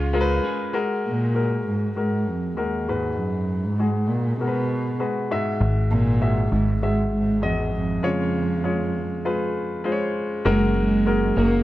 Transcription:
Already playing: analog synth bass C#2, grand piano C#3 G#3 F4 G#4 C#5, clean electric guitar G#3 C#4 F4 G#4, cello F4
0.13 clean electric guitar G#3 C#4 F4 G#4, grand piano G#3 F4 A#4
0.21 grand piano B4
0.44 clean electric guitar G#3 C#4 F4 G#4
0.73 grand piano G#3 F#4 A#4
1.08 cello A#2
1.35 grand piano G#3 F#4 A#4
1.68 cello G#2
1.96 cello G#2, grand piano G#3 F#4 A#4
2.28 cello F2
2.57 cello D#2, grand piano G#3 F#4 A#4
2.88 grand piano G#2 G#3 F#4 B4
3.18 cello F#2
3.65 cello G#2
3.79 grand piano G#3 F#4 G#4
4.08 cello A#2
4.40 cello B2, grand piano G#3 F#4 A#4
4.48 grand piano B4
5.00 grand piano G#3 F#4 B4
5.31 grand piano G#2 G#3 F#4 E5
5.60 analog synth bass G#1
5.91 cello A#2
6.21 grand piano G#3 F#4 E5
6.52 analog synth bass G#1, cello G#2
6.82 cello G#2, grand piano G#3 F#4 E5
7.14 cello G#2
7.42 cello E2, grand piano G#3 F#4 D#5
7.75 cello F2
8.03 grand piano C#3 G#3 F4 C#5
8.64 grand piano G#3 F4 C#5
9.25 grand piano G#3 F4 B4
9.85 grand piano G#3 F4 C5
9.92 grand piano C#5
10.45 analog synth bass F#1, clean electric guitar F#3 A#3 C#4 F#4 G#4, grand piano G#3 F#4 A#4, cello G#3
10.77 cello G#3
11.06 grand piano G#3 F#4 A#4
11.37 analog synth bass F#1, grand piano G#3 F#4 A#4, clean electric guitar A#3 C#4 F#4 G#4, cello A#3

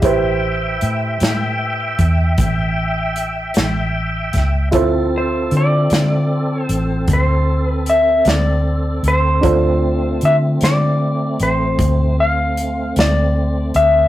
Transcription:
0.02 fingered electric bass A1, upright piano E4 G4 B4 C5, tonewheel organ E5 G5, kick, closed hi-hat
0.81 fingered electric bass A2, closed hi-hat
1.20 fingered electric bass A2, snare, closed hi-hat
1.99 fingered electric bass E2, kick, closed hi-hat
2.38 fingered electric bass A1, kick, closed hi-hat
3.16 closed hi-hat
3.54 fingered electric bass A1, snare, closed hi-hat
4.33 fingered electric bass C#2, kick, snare, closed hi-hat
4.71 fingered electric bass D2, tonewheel organ C4 A4, upright piano E4 F4 A4 C5, kick, closed hi-hat
5.18 electric slide guitar C5
5.51 fingered electric bass D3, closed hi-hat
5.57 electric slide guitar D5
5.90 fingered electric bass D3, snare, closed hi-hat
6.62 electric slide guitar C5
6.69 fingered electric bass A1, closed hi-hat
7.08 fingered electric bass D2, kick, closed hi-hat
7.13 electric slide guitar C5
7.67 electric slide guitar B4
7.86 electric slide guitar E5, closed hi-hat
8.25 fingered electric bass D2, snare, closed hi-hat
8.29 electric slide guitar D5
9.03 fingered electric bass D2, closed hi-hat
9.08 electric slide guitar C5
9.41 fingered electric bass D2, tonewheel organ A3 C4, upright piano D4 F4 A4 C5, kick, closed hi-hat
10.21 fingered electric bass D3, closed hi-hat
10.25 electric slide guitar E5
10.61 fingered electric bass D3, electric slide guitar D5, snare, closed hi-hat
11.40 fingered electric bass A1, electric slide guitar C5, closed hi-hat
11.78 fingered electric bass D2, kick, closed hi-hat
12.20 electric slide guitar F5
12.57 closed hi-hat
12.96 fingered electric bass D2, snare, closed hi-hat
13.00 electric slide guitar D5
13.74 fingered electric bass D2, electric slide guitar E5, closed hi-hat

